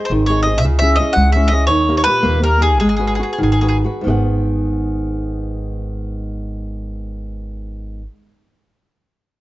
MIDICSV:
0, 0, Header, 1, 4, 480
1, 0, Start_track
1, 0, Key_signature, 5, "minor"
1, 0, Tempo, 358423
1, 849, Time_signature, 6, 3, 24, 8
1, 3253, Tempo, 396563
1, 4693, Tempo, 454890
1, 10800, End_track
2, 0, Start_track
2, 0, Title_t, "Mandolin"
2, 0, Program_c, 0, 25
2, 69, Note_on_c, 0, 72, 82
2, 147, Note_off_c, 0, 72, 0
2, 352, Note_on_c, 0, 73, 86
2, 565, Note_off_c, 0, 73, 0
2, 570, Note_on_c, 0, 75, 96
2, 775, Note_on_c, 0, 76, 94
2, 807, Note_off_c, 0, 75, 0
2, 854, Note_off_c, 0, 76, 0
2, 1054, Note_on_c, 0, 76, 102
2, 1281, Note_on_c, 0, 75, 93
2, 1291, Note_off_c, 0, 76, 0
2, 1510, Note_on_c, 0, 78, 96
2, 1520, Note_off_c, 0, 75, 0
2, 1767, Note_off_c, 0, 78, 0
2, 1772, Note_on_c, 0, 76, 81
2, 1978, Note_on_c, 0, 75, 100
2, 2034, Note_off_c, 0, 76, 0
2, 2226, Note_off_c, 0, 75, 0
2, 2233, Note_on_c, 0, 73, 96
2, 2626, Note_off_c, 0, 73, 0
2, 2642, Note_on_c, 0, 73, 79
2, 2723, Note_off_c, 0, 73, 0
2, 2729, Note_on_c, 0, 71, 109
2, 3214, Note_off_c, 0, 71, 0
2, 3260, Note_on_c, 0, 70, 88
2, 3468, Note_off_c, 0, 70, 0
2, 3484, Note_on_c, 0, 68, 97
2, 3685, Note_off_c, 0, 68, 0
2, 3699, Note_on_c, 0, 68, 72
2, 3797, Note_off_c, 0, 68, 0
2, 3811, Note_on_c, 0, 68, 55
2, 3887, Note_off_c, 0, 68, 0
2, 3902, Note_on_c, 0, 68, 50
2, 4005, Note_off_c, 0, 68, 0
2, 4033, Note_on_c, 0, 68, 57
2, 4112, Note_off_c, 0, 68, 0
2, 4127, Note_on_c, 0, 68, 56
2, 4209, Note_off_c, 0, 68, 0
2, 4224, Note_on_c, 0, 68, 47
2, 4315, Note_off_c, 0, 68, 0
2, 4340, Note_on_c, 0, 68, 54
2, 4425, Note_off_c, 0, 68, 0
2, 4466, Note_on_c, 0, 68, 44
2, 4550, Note_off_c, 0, 68, 0
2, 4573, Note_on_c, 0, 68, 55
2, 4663, Note_off_c, 0, 68, 0
2, 4684, Note_on_c, 0, 68, 50
2, 4750, Note_off_c, 0, 68, 0
2, 4763, Note_on_c, 0, 68, 57
2, 4845, Note_off_c, 0, 68, 0
2, 10800, End_track
3, 0, Start_track
3, 0, Title_t, "Nylon-string guitar"
3, 0, Program_c, 1, 24
3, 0, Note_on_c, 1, 68, 48
3, 0, Note_on_c, 1, 72, 47
3, 0, Note_on_c, 1, 75, 50
3, 147, Note_on_c, 1, 51, 74
3, 300, Note_off_c, 1, 68, 0
3, 304, Note_off_c, 1, 75, 0
3, 309, Note_off_c, 1, 72, 0
3, 395, Note_on_c, 1, 68, 48
3, 397, Note_on_c, 1, 72, 43
3, 400, Note_on_c, 1, 75, 53
3, 600, Note_off_c, 1, 68, 0
3, 611, Note_off_c, 1, 75, 0
3, 612, Note_off_c, 1, 51, 0
3, 616, Note_on_c, 1, 68, 41
3, 617, Note_off_c, 1, 72, 0
3, 627, Note_on_c, 1, 75, 44
3, 633, Note_on_c, 1, 72, 35
3, 801, Note_off_c, 1, 68, 0
3, 808, Note_off_c, 1, 75, 0
3, 811, Note_off_c, 1, 72, 0
3, 865, Note_on_c, 1, 49, 71
3, 1091, Note_on_c, 1, 61, 50
3, 1105, Note_on_c, 1, 64, 49
3, 1113, Note_on_c, 1, 68, 63
3, 1315, Note_off_c, 1, 61, 0
3, 1322, Note_off_c, 1, 64, 0
3, 1328, Note_off_c, 1, 49, 0
3, 1331, Note_on_c, 1, 61, 42
3, 1336, Note_off_c, 1, 68, 0
3, 1338, Note_on_c, 1, 64, 46
3, 1352, Note_on_c, 1, 68, 52
3, 1550, Note_on_c, 1, 56, 80
3, 1721, Note_off_c, 1, 61, 0
3, 1726, Note_off_c, 1, 64, 0
3, 1734, Note_off_c, 1, 68, 0
3, 1816, Note_on_c, 1, 61, 49
3, 1825, Note_on_c, 1, 64, 48
3, 1825, Note_on_c, 1, 68, 51
3, 2028, Note_off_c, 1, 61, 0
3, 2029, Note_off_c, 1, 56, 0
3, 2032, Note_off_c, 1, 64, 0
3, 2042, Note_on_c, 1, 61, 46
3, 2045, Note_off_c, 1, 68, 0
3, 2052, Note_on_c, 1, 64, 39
3, 2062, Note_on_c, 1, 68, 48
3, 2231, Note_off_c, 1, 61, 0
3, 2233, Note_off_c, 1, 64, 0
3, 2241, Note_off_c, 1, 68, 0
3, 2262, Note_on_c, 1, 51, 70
3, 2526, Note_on_c, 1, 58, 55
3, 2536, Note_on_c, 1, 63, 50
3, 2544, Note_on_c, 1, 67, 62
3, 2747, Note_off_c, 1, 51, 0
3, 2752, Note_off_c, 1, 63, 0
3, 2757, Note_off_c, 1, 67, 0
3, 2758, Note_on_c, 1, 46, 46
3, 2766, Note_on_c, 1, 63, 40
3, 2777, Note_on_c, 1, 67, 56
3, 2906, Note_off_c, 1, 58, 0
3, 2982, Note_on_c, 1, 58, 84
3, 3163, Note_off_c, 1, 46, 0
3, 3169, Note_off_c, 1, 63, 0
3, 3172, Note_off_c, 1, 67, 0
3, 3223, Note_off_c, 1, 58, 0
3, 3239, Note_on_c, 1, 58, 48
3, 3248, Note_on_c, 1, 63, 46
3, 3255, Note_on_c, 1, 67, 59
3, 3447, Note_off_c, 1, 58, 0
3, 3451, Note_off_c, 1, 67, 0
3, 3459, Note_off_c, 1, 63, 0
3, 3460, Note_on_c, 1, 58, 43
3, 3468, Note_on_c, 1, 67, 44
3, 3474, Note_on_c, 1, 63, 38
3, 3650, Note_off_c, 1, 58, 0
3, 3652, Note_off_c, 1, 67, 0
3, 3657, Note_off_c, 1, 63, 0
3, 3710, Note_on_c, 1, 56, 66
3, 3934, Note_on_c, 1, 66, 51
3, 3940, Note_on_c, 1, 68, 44
3, 3943, Note_on_c, 1, 71, 53
3, 4167, Note_off_c, 1, 66, 0
3, 4167, Note_off_c, 1, 68, 0
3, 4169, Note_off_c, 1, 71, 0
3, 4179, Note_on_c, 1, 66, 46
3, 4181, Note_off_c, 1, 56, 0
3, 4182, Note_on_c, 1, 68, 38
3, 4188, Note_on_c, 1, 71, 51
3, 4407, Note_on_c, 1, 51, 73
3, 4600, Note_off_c, 1, 66, 0
3, 4600, Note_off_c, 1, 68, 0
3, 4601, Note_off_c, 1, 71, 0
3, 4691, Note_on_c, 1, 66, 44
3, 4701, Note_on_c, 1, 68, 41
3, 4704, Note_on_c, 1, 71, 50
3, 4905, Note_off_c, 1, 51, 0
3, 4920, Note_off_c, 1, 66, 0
3, 4921, Note_off_c, 1, 68, 0
3, 4931, Note_on_c, 1, 66, 43
3, 4934, Note_off_c, 1, 71, 0
3, 4937, Note_on_c, 1, 68, 32
3, 4946, Note_on_c, 1, 71, 41
3, 5109, Note_on_c, 1, 44, 52
3, 5116, Note_off_c, 1, 66, 0
3, 5116, Note_off_c, 1, 68, 0
3, 5124, Note_off_c, 1, 71, 0
3, 5136, Note_on_c, 1, 51, 53
3, 5149, Note_on_c, 1, 59, 43
3, 5174, Note_on_c, 1, 68, 49
3, 5179, Note_on_c, 1, 75, 49
3, 5194, Note_off_c, 1, 75, 0
3, 5198, Note_on_c, 1, 78, 59
3, 9309, Note_off_c, 1, 44, 0
3, 9336, Note_off_c, 1, 51, 0
3, 9349, Note_off_c, 1, 59, 0
3, 9375, Note_off_c, 1, 68, 0
3, 9398, Note_off_c, 1, 78, 0
3, 10800, End_track
4, 0, Start_track
4, 0, Title_t, "Upright bass"
4, 0, Program_c, 2, 32
4, 134, Note_on_c, 2, 32, 94
4, 838, Note_off_c, 2, 32, 0
4, 838, Note_on_c, 2, 37, 113
4, 1306, Note_off_c, 2, 37, 0
4, 1562, Note_on_c, 2, 37, 92
4, 2279, Note_off_c, 2, 37, 0
4, 2279, Note_on_c, 2, 39, 113
4, 2752, Note_off_c, 2, 39, 0
4, 3007, Note_on_c, 2, 39, 96
4, 3716, Note_off_c, 2, 39, 0
4, 3716, Note_on_c, 2, 32, 111
4, 4186, Note_off_c, 2, 32, 0
4, 4448, Note_on_c, 2, 32, 85
4, 4926, Note_off_c, 2, 32, 0
4, 5165, Note_on_c, 2, 32, 90
4, 9365, Note_off_c, 2, 32, 0
4, 10800, End_track
0, 0, End_of_file